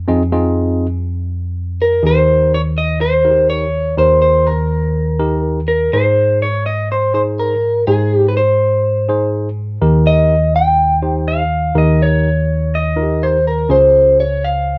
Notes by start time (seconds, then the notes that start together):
0.08 F2 C4 D#4 F4 G#4 D#5
0.32 C4 D#4 F4 G#4 D#5
1.82 A#4
2.03 D#2 D#3 D#4 G4 G#4 C5
2.09 A#4
2.54 C#5
2.78 D#5
3.01 C5
3.25 D#4 F#4 A#4
3.30 G4
3.50 C#5
3.97 D#2 D#3 D#4 G4 A#4 C5
4.22 C5
4.47 A#4
5.19 D#4 G4 A#4
5.68 A#4
5.93 G#2 D#4 G#4 C5
6.42 C#5
6.66 D#5
6.92 C5
7.14 D#4 G#4 C5
7.39 A#4
7.87 G#2 D#4 G#4 C5
8.28 B4
8.37 C5
9.09 D#4 G#4 C5
9.81 D#2 D#3 D#4 G4 A#4
10.07 D#5
10.56 G5
11.02 D#4 G4 C5
11.28 F5
11.75 D#2 D#3 D#4 G4 A#4 D#5
12.02 C#5
12.75 D#5
12.96 D#4 F4 A#4
13.02 G4
13.23 C5
13.47 A#4
13.69 C#2 C#3 C#4 F4 G#4 C5
14.20 C#5
14.44 F5